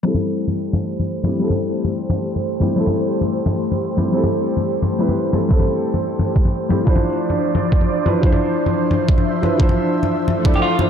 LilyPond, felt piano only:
\new Staff \with { instrumentName = "Felt piano" } { \time 4/4 \key a \minor \tempo 4 = 176 <g c' e' a'>2.~ <g c' e' a'>8 <g c' e' g'>8 | <g c' e' a'>2.~ <g c' e' a'>8 <g c' e' g'>8 | <g c' e' a'>2.~ <g c' e' a'>8 <g c' e' g'>8 | <g c' e' a'>2~ <g c' e' a'>8 <g c' e' b'>8 r8 <g c' e' a'>8 |
<g c' e' a'>2.~ <g c' e' a'>8 <g c' e' g'>8 | <f d' e' c''>2.~ <f d' e' c''>8 <f d' e' b'>8 | <f d' e' c''>2.~ <f d' e' c''>8 <f d' e' b'>8 | <f d' e' c''>2~ <f d' e' c''>8 <f d' e' d''>8 r8 <f d' e' c''>8 | }